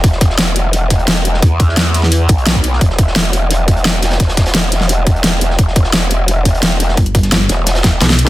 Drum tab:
HH |x-x-x-x-x-xxx-x-|x-x-x-x-x-xxx-x-|x-x-x-x-x-xxx-xx|xxxxx-x-x-xxx-x-|
SD |-o-oo-------o--o|---oo-oo----o--o|-o-oo-------o-oo|ooooo-oo----o--o|
BD |o-o-------o-----|o-o-------o--o--|o-o-------o-----|o-o-------o-----|

HH |x-x-x-x-x-xxx-x-|xxxxx-x-xxx-xxx-|
SD |-o-oo-------o--o|---oo-o-ooo-oo--|
BD |o-o-------o-----|o-o-------o-----|